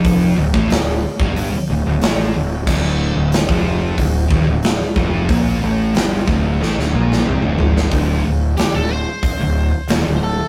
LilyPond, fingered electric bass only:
\new Staff \with { instrumentName = "Fingered electric bass" } { \clef bass \time 4/4 \key d \minor \tempo 4 = 92 f,,8 d,,16 a,,16 d,,8 r16 g,,8 r16 d,,16 d,,16 a,,8 d,,8 | d,,8. d,,8 f,,8. d,,8 ees,,16 d,,8 r16 f,,8 | bes,,8 a,,8 g,,8 d,,8 a,,16 d,,16 bes,,8 c,16 d,,16 gis,,8 | d,,8 d,,8 r16 d,,8 r8 d,,8 r16 ees,,16 d,,8 r16 | }